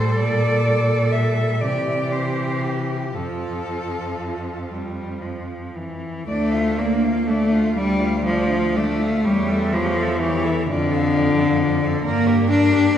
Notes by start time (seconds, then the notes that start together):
Already playing: A2 G3 A4 C5
0.20 A#2 D5
1.11 E5
1.61 C3 E3 G4 D5
2.12 C5
2.63 G4
3.14 F2 F3 F4 A4
4.69 G3
5.22 F3
5.76 E3
6.27 D2 A3 D4 D5
6.51 F4 F5
6.78 A#3 D4 D5
7.04 F4 F5
7.27 A3 D4 D5
7.52 F4 F5
7.76 D2 G3 D4 D5
8.00 F4
8.04 F5
8.25 F3 D4 D5
8.51 F4 F5
8.76 A3 D4 D5
8.99 F4 F5
9.24 E2 G3 G4 C#5
9.49 A4 E5
9.73 F3 G4 C#5
9.96 A4
10.01 E5
10.20 E3 G4 C#5
10.43 A4 E5
10.67 F2 D3 F4 D5
10.91 A4 F5
11.14 F4 D5
11.37 A4 F5
11.60 F4 D5
11.83 A4 F5
12.04 G2 A#3 A#4 D5
12.26 G4 A#4
12.48 D4 A#4 D5
12.72 G4 A#4